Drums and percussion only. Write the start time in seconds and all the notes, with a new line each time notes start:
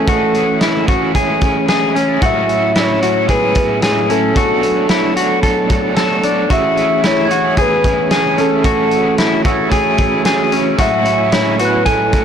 0.08 kick, closed hi-hat
0.34 closed hi-hat
0.61 snare, closed hi-hat
0.88 kick, closed hi-hat
1.15 kick, closed hi-hat
1.41 kick, closed hi-hat
1.68 snare, closed hi-hat
1.96 closed hi-hat
2.22 kick, closed hi-hat
2.49 closed hi-hat
2.75 snare, closed hi-hat
3.02 closed hi-hat
3.28 kick, closed hi-hat
3.55 kick, closed hi-hat
3.82 snare, closed hi-hat
4.10 closed hi-hat
4.36 kick, closed hi-hat
4.63 closed hi-hat
4.89 snare, closed hi-hat
5.17 closed hi-hat
5.43 kick, closed hi-hat
5.70 kick, closed hi-hat
5.96 snare, closed hi-hat
6.23 closed hi-hat
6.50 kick, closed hi-hat
6.77 closed hi-hat
7.03 snare, closed hi-hat
7.31 closed hi-hat
7.57 kick, closed hi-hat
7.84 kick, closed hi-hat
8.11 snare, closed hi-hat
8.38 closed hi-hat
8.64 kick, closed hi-hat
8.91 closed hi-hat
9.18 snare, closed hi-hat
9.45 kick, closed hi-hat
9.71 kick, closed hi-hat
9.98 kick, closed hi-hat
10.25 snare, closed hi-hat
10.52 closed hi-hat
10.78 kick, closed hi-hat
11.05 closed hi-hat
11.32 snare, closed hi-hat
11.59 closed hi-hat
11.86 kick, closed hi-hat
12.13 kick, closed hi-hat